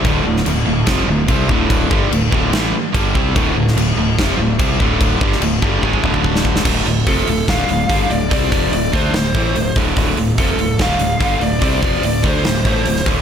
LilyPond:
<<
  \new Staff \with { instrumentName = "Lead electric guitar" } { \time 4/4 \key d \minor \tempo 4 = 145 r1 | r1 | r1 | r1 |
r4 a'4 f''4. d''8 | d''4 d''8 c''2 r8 | r4 a'4 f''4. d''8 | d''4 d''8 c''2 r8 | }
  \new Staff \with { instrumentName = "Distorted electric guitar" } { \clef bass \time 4/4 \key d \minor <d, a, d>8 <d, a,>8 <d, a,>8 <d, a,>8 <f, c f>8 <d, a,>8 <c g c'>8 <d, a, d>8~ | <d, a, d>8 <g, d g>8 <d, a,>8 <d, a, d>8 <a, e a>8 r8 <g, d g>8 <c g c'>8 | <d, a, d>8 <d, a,>8 <d, a,>8 <d, a,>8 <f, c f>8 <d, a,>8 <c g c'>8 <d, a, d>8~ | <d, a, d>8 <g, d g>8 <d, a,>8 <g, d g>8 <gis, ees gis>8 <d, a, d>4. |
<d, a, d>8 <d, a,>8 <f, c f>8 <d, a,>8 <d, a, d>8 <d, a,>8 <g, d g>8 <d, a,>8 | <c g c'>8 <f, c f>8 <d, a,>8 <d a d'>8 <d, a,>8 <a, e a>8 <d, a,>8 <d, a, d>8 | <d, a, d>8 <d, a,>8 <f, c f>8 <d, a,>8 <d, a, d>8 <d, a,>8 <g, d g>8 <d, a,>8 | <c g c'>8 <f, c f>8 <d, a,>8 <d a d'>8 <d, a,>8 <a, e a>8 <d, a,>8 <d, a, d>8 | }
  \new Staff \with { instrumentName = "Overdriven electric guitar" } { \clef bass \time 4/4 \key d \minor <d, a, d>8 <d, a,>8 <d, a,>8 <d, a,>8 <f, c f>8 <d, a,>8 <c g c'>8 <d, a, d>8~ | <d, a, d>8 <g, d g>8 <d, a,>8 <d, a, d>8 <a, e a>8 r8 <g, d g>8 <c g c'>8 | <d, a, d>8 <d, a,>8 <d, a,>8 <d, a,>8 <f, c f>8 <d, a,>8 <c g c'>8 <d, a, d>8~ | <d, a, d>8 <g, d g>8 <d, a,>8 <g, d g>8 <gis, ees gis>8 <d, a, d>4. |
<d, a, d>8 <d, a,>8 <f, c f>8 <d, a,>8 <d, a, d>8 <d, a,>8 <g, d g>8 <d, a,>8 | <c g c'>8 <f, c f>8 <d, a,>8 <d a d'>8 <d, a,>8 <a, e a>8 <d, a,>8 <d, a, d>8 | <d, a, d>8 <d, a,>8 <f, c f>8 <d, a,>8 <d, a, d>8 <d, a,>8 <g, d g>8 <d, a,>8 | <c g c'>8 <f, c f>8 <d, a,>8 <d a d'>8 <d, a,>8 <a, e a>8 <d, a,>8 <d, a, d>8 | }
  \new Staff \with { instrumentName = "Fingered electric bass" } { \clef bass \time 4/4 \key d \minor d,,8 d,,8 d,,8 d,,8 f,,8 d,,8 c,8 d,,8~ | d,,8 g,,8 d,,8 d,,8 a,,8 r8 g,,8 c,8 | d,,8 d,,8 d,,8 d,,8 f,,8 d,,8 c,8 d,,8~ | d,,8 g,,8 d,,8 g,,8 gis,,8 d,,4. |
d,,8 d,,8 f,,8 d,,8 d,,8 d,,8 g,,8 d,,8 | c,8 f,,8 d,,8 d,8 d,,8 a,,8 d,,8 d,,8 | d,,8 d,,8 f,,8 d,,8 d,,8 d,,8 g,,8 d,,8 | c,8 f,,8 d,,8 d,8 d,,8 a,,8 d,,8 d,,8 | }
  \new DrumStaff \with { instrumentName = "Drums" } \drummode { \time 4/4 <cymc bd>8. sn16 cymc4 <cymc bd sn>4 <cymc bd>8 bd8 | <cymc bd>8 bd8 cymc8 bd8 <cymc sn>4 <cymc bd>8 bd8 | <cymc bd>8. sn16 cymc4 <cymc bd sn>4 <cymc bd>8 bd8 | <cymc bd>8 bd16 sn16 cymc8 bd8 bd16 bd16 bd16 bd16 bd16 sn16 bd16 sn16 |
<cymc bd>8 hho8 <hho bd>8 hho8 <hho bd sn>8 hho8 <hho bd>8 hho8 | <hho bd>8 <hho bd>8 hho8 <hho bd>8 <hho sn>8 <hho bd>8 hho8 <hho bd>8 | <hho bd>8 hho8 <hho bd>8 hho8 <hho bd sn>8 hho8 <hho bd>8 hho8 | <hho bd>8 <hho bd>8 hho8 <hho bd>8 <hho sn>8 <hho bd>8 hho16 sn16 <hho bd>8 | }
>>